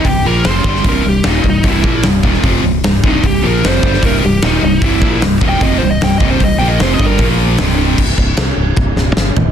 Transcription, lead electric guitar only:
\new Staff \with { instrumentName = "Lead electric guitar" } { \time 4/4 \key bes \lydian \tempo 4 = 151 g'8 bes'8 c''4 bes'8 g'8 ees'8 ees'8 | e'4 r2 r8 ees'8 | g'8 bes'8 c''4 bes'8 g'8 ees'8 ees'8 | e'4 \tuplet 3/2 { r4 g''8 ees''8 c''8 ees''8 g''8 ees''8 c''8 } |
\tuplet 3/2 { ees''8 g''8 ees''8 c''8 ees''8 bes'8 } r2 | r1 | }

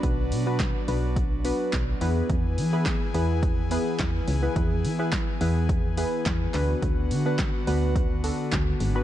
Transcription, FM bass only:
\new Staff \with { instrumentName = "FM bass" } { \clef bass \time 4/4 \key b \dorian \tempo 4 = 106 b,,8 b,4 b,,4. b,,8 e,8 | e,8 e4 e,4. e,8 cis,8 | e,8 e4 e,4. e,8 d,8 | d,8 d4 d,4. d,8 gis,,8 | }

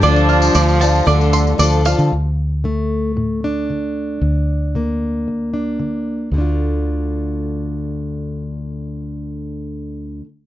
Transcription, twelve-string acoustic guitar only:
\new Staff \with { instrumentName = "Twelve-string acoustic guitar" } { \time 4/4 \key d \minor \tempo 4 = 114 <d a d' f' a'>4 <a d' f' a'>8 <d' f' a'>8 <a d' f' a'>4 <a d' f' a'>8 <d' f' a'>8 | r1 | r1 | r1 |
r1 | }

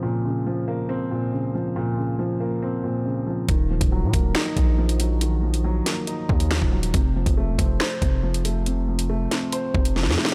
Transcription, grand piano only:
\new Staff \with { instrumentName = "Grand piano" } { \clef bass \time 4/4 \key bes \minor \tempo 4 = 139 <bes, des f c'>8 des8 f8 bes8 c'8 bes,8 des8 f8 | bes,8 des8 f8 bes8 c'8 bes,8 des8 f8 | ees8 f8 ges8 bes8 ees'8 ees8 f8 ges8 | ees8 f8 ges8 bes8 ees'8 ees8 f8 ges8 |
c8 f8 a8 c'8 c''8 c8 f8 a8 | c8 f8 a8 c'8 c''8 c8 f8 a8 | }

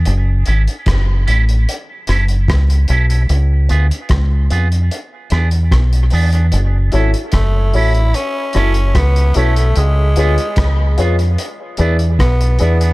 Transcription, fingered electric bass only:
\new Staff \with { instrumentName = "Fingered electric bass" } { \clef bass \time 4/4 \key fis \minor \tempo 4 = 74 fis,,8 gis,,16 r16 fis,,8 a,,8 r8 fis,,8 cis,8 b,,8 | cis,8 d,16 r16 cis,8 eis,8 r8 e,8 b,,8 e,8 | fis,,8 gis,,16 r16 fis,,8 a,,8 r8 fis,,8 cis,8 b,,8 | cis,8 d,16 r16 cis,8 eis,8 r8 e,8 b,,8 e,8 | }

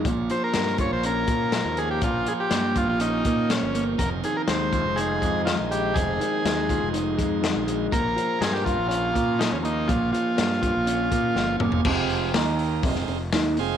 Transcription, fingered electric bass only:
\new Staff \with { instrumentName = "Fingered electric bass" } { \clef bass \time 4/4 \key bes \dorian \tempo 4 = 122 bes,,8 r8 g,8. bes,,8. bes,8. ees,8. | bes,,8 r8 g,8. bes,,8. bes,8. g,,8. | f,,8 r8 ees,8. f,,8. f,8. bes,,8. | f,,8 r8 ees,8. f,,8. f,8. bes,,8. |
bes,,8 r8 g,8. bes,,8. bes,8. ees,8. | bes,,8 r8 g,8. bes,,8. bes,8 g,,8 f,,8 | f,,4 ees,4 f,,16 f,,16 f,,8 ees,8 f,,8 | }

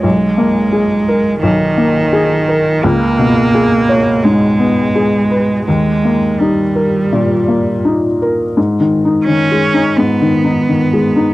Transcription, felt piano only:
\new Staff \with { instrumentName = "Felt piano" } { \time 4/4 \key dis \phrygian \tempo 4 = 85 b,,8 ais8 gis'8 ais'8 b,,8 ais8 gis'8 ais'8 | cis,8 b,8 gis'8 cis''8 gis,8 b8 gis'8 b'8 | dis,8 ais8 dis'8 ais'8 ais,8 ais8 dis'8 ais'8 | \key gis \minor \tuplet 3/2 { gis,8 dis8 dis'8 dis8 gis8 dis'8 gis,8 dis8 dis'8 dis8 gis8 dis'8 } | }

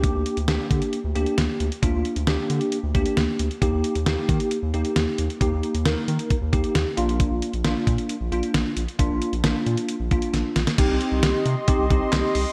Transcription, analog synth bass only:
\new Staff \with { instrumentName = "Analog synth bass" } { \clef bass \time 4/4 \key ees \major \tempo 4 = 134 d,16 d,16 r16 d,16 d,16 r16 d16 r8 d,16 d,16 r16 d,16 r16 d,16 r16 | d,16 d,16 r16 d,16 d,16 r16 d16 r8 d,16 d,16 r16 d,16 r16 d,16 r16 | ees,16 ees,16 r16 ees,16 ees,16 r16 ees16 r8 ees,16 ees,16 r16 ees,16 r16 ees,16 r16 | ees,16 ees,16 r16 ees,16 ees,16 r16 ees16 r8 ees,16 ees,16 r16 ees,16 r16 bes,,8~ |
bes,,16 bes,,16 r16 bes,,16 bes,,16 r16 bes,16 r8 bes,,16 bes,,16 r16 bes,,16 r16 bes,,16 r16 | bes,,16 bes,,16 r16 bes,,16 bes,,16 r16 bes,16 r8 bes,,16 bes,,16 r16 bes,,16 r16 bes,,16 r16 | c,16 c,16 r16 c,16 c,16 r16 c16 r8 c,16 c,16 r16 c,16 r16 c,16 r16 | }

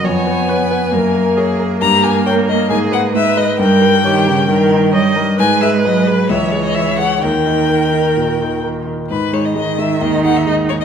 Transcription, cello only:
\new Staff \with { instrumentName = "Cello" } { \clef bass \time 4/4 \key ges \major \tempo 4 = 133 ces'2 bes2~ | \key gis \minor bes2. gis4 | g4 dis8 cis8 dis4 g8 g8 | gis4 fis4 e2 |
dis2.~ dis8 r8 | dis1 | }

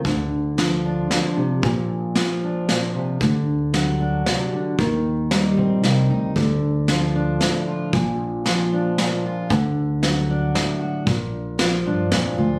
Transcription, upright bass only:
\new Staff \with { instrumentName = "Upright bass" } { \clef bass \time 3/4 \key d \phrygian \tempo 4 = 114 d,2 r4 | bes,,2 r4 | d,2 r4 | ees,4. bes,,8 c,8 d,8 |
d,2 r4 | bes,,2 r4 | d,2 r4 | bes,,4. g,8 f,8 d,8 | }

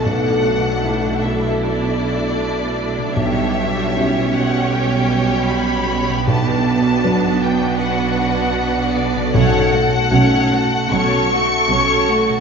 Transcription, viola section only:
\new Staff \with { instrumentName = "Viola section" } { \time 4/4 \key b \minor \tempo 4 = 78 << { d'1~ | d'4 cis'2. | d'1 | cis'8 a8 cis'8 a8 cis'8 a8 cis'8 a8 | } \\ { a1 | g1 | b1 | fis8 a8 fis8 a8 fis8 a8 fis8 a8 | } >> }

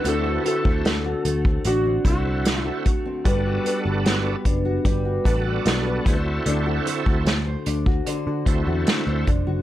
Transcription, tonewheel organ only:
\new Staff \with { instrumentName = "Tonewheel organ" } { \time 4/4 \key d \mixolydian \tempo 4 = 75 <c' e' fis' a'>4 r4. <c' e' f' fis' a'>4 r8 | <b d' fis' a'>4. r4 <b d' fis' a'>4 <c' e' fis' aes' a'>8~ | <c' e' fis' aes' a'>4 r4. <c' e' fis' a'>4 r8 | }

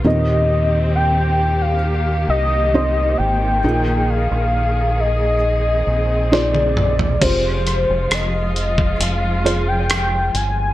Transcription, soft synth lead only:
\new Staff \with { instrumentName = "Soft synth lead" } { \time 4/4 \key f \dorian \tempo 4 = 67 ees''4 g''8. f''8. ees''4 g''8~ | g''8 f''4 ees''4. d''4 | c''4 ees''4 f''8. g''8. aes''8 | }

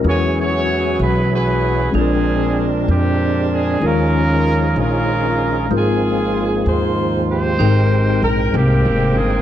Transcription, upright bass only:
\new Staff \with { instrumentName = "Upright bass" } { \clef bass \time 6/8 \key aes \major \tempo 4. = 64 e,4. b,,4. | bes,,4. f,4. | ees,4. bes,,4. | aes,,4. ees,4. |
aes,,4 bes,,8 c,8 f,,8 g,,8 | }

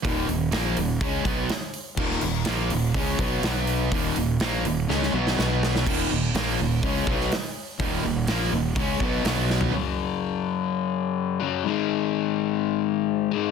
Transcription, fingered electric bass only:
\new Staff \with { instrumentName = "Fingered electric bass" } { \clef bass \time 4/4 \key ees \minor \tempo 4 = 124 ees,,8 ees,,8 bes,,8 ees,,8 des,8 ces,8 r4 | ees,,8 ees,,8 bes,,8 ees,,8 des,8 ces,8 b,,4 | ees,,8 ees,,8 bes,,8 ees,,8 des,8 ces,8 b,,4 | ees,,8 ees,,8 bes,,8 ees,,8 des,8 ces,8 r4 |
ees,,8 ees,,8 bes,,8 ees,,8 des,8 ces,8 b,,4 | r1 | r1 | }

